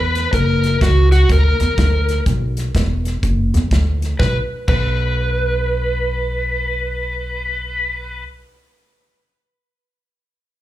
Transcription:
0.00 0.24 E2 medium
0.00 0.34 B4 loud
0.15 snare soft
0.15 closed hi-hat medium
0.33 0.73 F#1 loud
0.33 0.78 A#4 loud
0.33 kick medium
0.33 snare soft
0.33 closed hi-hat medium
0.64 snare soft
0.64 closed hi-hat medium
0.81 1.21 C#2 medium
0.81 1.11 F#4 medium
0.81 kick medium
0.81 snare loud
0.81 closed hi-hat medium
1.12 1.30 F#4 medium
1.12 snare soft
1.12 closed hi-hat medium
1.29 1.55 D2 medium
1.29 2.23 A#4 medium
1.29 kick medium
1.29 closed hi-hat medium
1.60 1.75 E2 loud
1.60 snare soft
1.60 closed hi-hat medium
1.78 2.18 D2 medium
1.78 kick medium
1.78 snare loud
1.78 closed hi-hat medium
2.09 snare soft
2.09 closed hi-hat medium
2.26 2.66 B1 medium
2.26 kick medium
2.26 snare soft
2.26 closed hi-hat medium
2.57 snare soft
2.57 closed hi-hat medium
2.75 3.15 E1 medium
2.75 kick medium
2.75 snare loud
2.75 closed hi-hat medium
3.05 snare soft
3.05 closed hi-hat medium
3.23 3.48 F#1 medium
3.23 kick medium
3.23 closed hi-hat medium
3.54 3.68 E2 medium
3.54 snare soft
3.54 closed hi-hat medium
3.71 4.11 D2 medium
3.71 kick medium
3.71 snare loud
3.71 closed hi-hat medium
4.02 snare soft
4.02 closed hi-hat medium
4.19 4.37 B1 medium
4.19 4.37 B4 medium
4.19 kick loud
4.19 snare medium
4.68 8.22 B1 loud
4.68 8.23 B4 medium
4.68 kick medium
4.68 crash medium

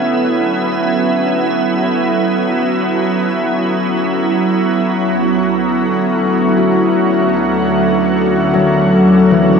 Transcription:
0.00 4.99 D3 medium
0.00 9.60 F#3 medium
0.00 4.99 A3 medium
0.00 9.60 B3 medium
0.00 4.97 C#4 medium
0.00 9.60 E4 medium
0.00 4.97 A4 medium
4.99 9.60 D2 medium
4.99 9.60 D3 medium
4.99 9.60 A3 medium
5.26 9.60 C#4 medium
5.38 6.57 F#4 soft
6.57 9.35 E4 soft
6.57 9.34 F#4 soft
6.69 9.60 A4 medium
8.54 9.60 F#3 medium
9.31 9.60 E3 medium

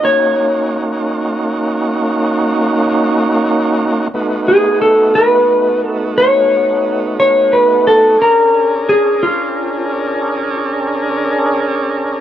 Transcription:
0.02 4.08 A#3 medium
0.02 4.08 C#4 medium
0.02 4.07 D#4 medium
0.02 4.08 F#4 medium
0.02 0.77 C#5 medium
4.14 8.18 A3 medium
4.14 8.17 B3 medium
4.14 8.17 D#4 medium
4.14 8.18 F#4 medium
4.48 4.81 G#4 medium
4.82 5.16 A4 medium
5.15 5.88 B4 medium
5.88 6.20 A4 medium
6.18 7.19 C#5 loud
7.20 7.54 C#5 loud
7.53 7.87 B4 medium
7.87 8.18 A4 medium
8.18 12.21 C#4 medium
8.18 12.21 D4 medium
8.18 12.21 G#4 medium
8.18 12.21 A#4 medium
8.18 8.89 A#4 medium
8.89 9.24 G#4 medium
9.23 10.54 F4 medium

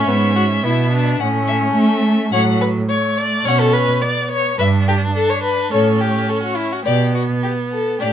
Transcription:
0.00 0.65 C#4 medium
0.07 0.63 G#2 medium
0.07 0.35 B3 medium
0.07 1.17 E5 medium
0.36 0.44 F#4 medium
0.63 1.20 B2 medium
0.63 1.21 B3 medium
0.63 0.91 E4 medium
0.92 1.21 D4 medium
1.20 1.76 A2 medium
1.20 2.32 A3 medium
1.20 2.32 C#4 medium
1.20 1.28 F#5 medium
1.48 1.56 E5 medium
1.75 2.32 A3 medium
1.75 2.31 E5 medium
2.32 2.80 A2 medium
2.32 2.88 F#3 medium
2.32 2.41 C#5 loud
2.32 2.59 F#5 medium
2.61 2.69 B4 medium
2.90 3.47 A3 medium
2.90 3.19 C#5 loud
3.18 3.47 D5 loud
3.45 3.92 B2 medium
3.45 4.03 C#4 medium
3.45 3.61 C#5 loud
3.45 3.72 F#5 medium
3.60 3.75 A4 loud
3.74 4.03 B4 loud
4.01 4.57 B3 medium
4.01 4.30 D5 medium
4.31 4.58 C#5 loud
4.58 5.05 G2 medium
4.58 5.73 D4 medium
4.58 4.67 B4 medium
4.58 4.85 E5 medium
4.88 4.96 G4 medium
5.16 5.32 A4 medium
5.30 5.43 C#5 medium
5.44 5.71 B4 medium
5.71 6.19 A2 medium
5.71 6.85 C#4 medium
5.71 6.02 A4 medium
5.71 5.98 C#5 medium
6.01 6.31 G4 medium
6.29 6.43 A4 medium
6.43 6.57 F#4 medium
6.56 6.74 E4 medium
6.72 6.84 F#4 medium
6.85 7.34 B2 medium
6.85 8.02 B3 medium
6.85 7.13 G4 medium
6.85 7.12 D5 medium
7.14 7.22 F#4 medium
7.43 7.51 G4 medium
7.73 8.00 A4 medium
8.00 8.13 A2 medium
8.00 8.13 D4 medium
8.00 8.13 G4 medium
8.00 8.13 D5 soft

